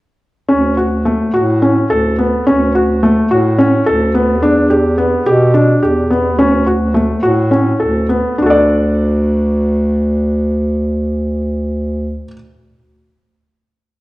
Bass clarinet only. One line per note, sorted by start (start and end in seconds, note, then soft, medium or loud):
0.49 1.25 D2 medium
1.34 1.85 A2 medium
1.91 2.41 D2 medium
2.47 3.22 D2 medium
3.31 3.81 A2 medium
3.87 4.44 D2 medium
4.43 5.17 E2 medium
5.26 5.76 B2 medium
5.82 6.40 E2 medium
6.38 7.14 D2 medium
7.24 7.75 A2 medium
7.81 8.23 D2 medium
8.38 12.23 D2 medium